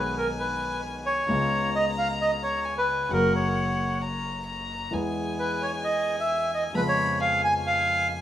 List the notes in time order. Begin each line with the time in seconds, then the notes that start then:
Already playing: B1 B2 D#3 G#3 B3 G#4 B4 G#5
0.18 A#4
0.40 B4
1.06 C#5
1.28 C#2 C#3 G#3 B3 F4 A#5
1.75 D#5
1.98 F5
2.21 D#5
2.43 C#5
2.65 G#5
2.78 B4
3.09 F#1 F#2 C#3 F#3 A#3 F#4 A#4 F#5
3.35 C#5
4.02 A#5
4.47 A#5
4.91 E2 E3 G#3 B3 G#4 G#5
5.39 B4
5.62 C#5
5.84 D#5
6.20 E5
6.54 D#5
6.73 F2 C#3 F3 G#3 B3 B4 B5
6.77 F4
6.88 C#5
7.20 F5 G#5
7.44 G#5
7.67 F5